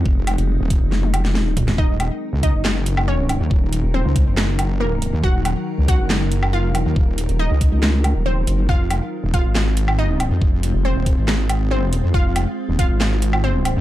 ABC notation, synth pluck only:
X:1
M:4/4
L:1/16
Q:1/4=139
K:Ebdor
V:1 name="Synth pluck"
z16 | [Ee]6 [Ee]6 [Dd]4- | [Dd]4 [Cc]8 [B,B]3 z | [Gg]6 [Gg]6 [Ff]4- |
[Ff]4 [Ee]8 [Cc]3 z | [Ff]6 [Ff]6 [Ee]4- | [Ee]4 [Cc]8 [Cc]3 z | [Ff]6 [Ff]6 [Cc]4 |]